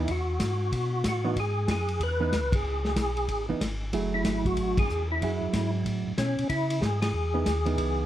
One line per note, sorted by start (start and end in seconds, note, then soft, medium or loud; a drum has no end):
0.00 0.11 E4 medium
0.08 0.39 E2 medium
0.08 1.07 F#4 medium
0.08 kick soft
0.08 ride medium
0.40 0.71 G#2 medium
0.40 kick soft
0.40 snare medium
0.40 hi-hat pedal medium
0.40 ride medium
0.72 1.03 B2 medium
0.72 kick soft
0.72 ride medium
1.04 1.35 A2 medium
1.04 kick soft
1.04 snare medium
1.04 hi-hat pedal medium
1.04 ride medium
1.08 1.40 F#4 medium
1.24 1.35 E3 medium
1.24 1.35 B3 medium
1.24 1.36 D#4 medium
1.36 1.67 G#2 medium
1.36 1.70 G#4 loud
1.36 kick soft
1.36 ride medium
1.68 1.99 F#2 medium
1.68 2.03 G#4 medium
1.68 kick soft
1.68 snare medium
1.68 hi-hat pedal soft
1.68 ride medium
1.88 ride soft
2.00 2.32 E2 medium
2.00 2.56 B4 loud
2.00 kick soft
2.00 ride medium
2.20 2.31 E3 medium
2.20 2.31 B3 medium
2.20 2.32 D#4 medium
2.32 2.43 D#2 medium
2.32 kick soft
2.32 snare medium
2.32 hi-hat pedal medium
2.32 ride medium
2.43 2.54 C#2 medium
2.52 2.63 B1 medium
2.52 3.46 G#4 loud
2.52 kick medium
2.52 ride medium
2.63 2.95 C#2 medium
2.85 snare soft
2.96 3.28 B1 medium
2.96 kick soft
2.96 snare medium
2.96 hi-hat pedal medium
2.96 ride medium
3.17 ride soft
3.28 3.47 A1 medium
3.28 kick soft
3.28 ride medium
3.48 3.54 A1 soft
3.48 3.60 E3 medium
3.48 3.60 B3 medium
3.48 3.60 D#4 medium
3.61 3.92 G#1 medium
3.61 kick soft
3.61 snare medium
3.61 hi-hat pedal medium
3.61 ride medium
3.93 4.24 F#1 medium
3.93 4.82 F#3 medium
3.93 4.83 A3 medium
3.93 4.83 E4 medium
3.93 4.83 G#4 medium
3.93 kick soft
3.93 ride medium
4.14 4.47 E4 medium
4.25 4.56 G#1 medium
4.25 kick soft
4.25 snare medium
4.25 hi-hat pedal medium
4.25 ride medium
4.45 4.79 F#4 loud
4.45 kick soft
4.45 ride soft
4.57 4.88 A1 medium
4.57 kick soft
4.57 ride medium
4.77 5.08 G#4 loud
4.77 kick medium
4.77 ride medium
4.89 5.21 E2 medium
4.89 hi-hat pedal medium
5.12 5.71 E4 medium
5.21 5.40 F#2 medium
5.21 6.11 F#3 medium
5.21 6.11 E4 medium
5.21 6.12 G#4 medium
5.21 kick soft
5.21 ride medium
5.42 5.48 F#2 soft
5.53 5.84 G#2 medium
5.53 kick soft
5.53 snare medium
5.53 hi-hat pedal medium
5.53 ride medium
5.86 6.04 A2 medium
5.86 kick soft
5.86 ride medium
6.07 6.13 A2 soft
6.17 6.36 B2 medium
6.17 6.48 C#4 medium
6.17 kick soft
6.17 snare medium
6.17 hi-hat pedal medium
6.17 ride medium
6.39 6.44 B2 soft
6.39 ride soft
6.49 6.81 C#3 medium
6.49 6.83 E4 loud
6.49 kick soft
6.49 ride medium
6.70 ride medium
6.81 7.13 G#2 medium
6.81 7.00 G#4 medium
6.81 kick soft
6.81 snare medium
6.81 hi-hat pedal medium
7.02 8.06 G#4 loud
7.02 snare medium
7.02 ride medium
7.14 7.45 E2 medium
7.34 7.45 E3 medium
7.34 7.45 B3 medium
7.34 7.45 D#4 medium
7.46 7.77 D#2 medium
7.46 kick soft
7.46 snare medium
7.46 hi-hat pedal medium
7.46 ride medium
7.65 8.06 E3 medium
7.65 8.06 B3 medium
7.65 8.06 D#4 medium
7.65 ride soft
7.78 8.06 C#2 medium
7.78 kick soft
7.78 ride medium